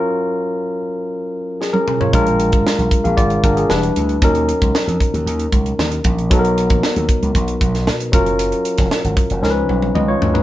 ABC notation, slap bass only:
X:1
M:4/4
L:1/16
Q:1/4=115
K:F#
V:1 name="Slap bass" clef=bass
z16 | A,,,3 G,,, z B,,, z A,,, G,,,2 G,,,2 =E,,,2 =D,,2 | D,,3 C,, z E,, z D,, D,,2 C,,2 D,,2 A,,,2 | B,,,3 A,,, z D,, z C,, B,,,2 B,,,2 B,,2 F,,,2- |
F,,,2 z E,,, z G,,, z F,,, C,,2 B,,,2 C,,2 =D,,2 |]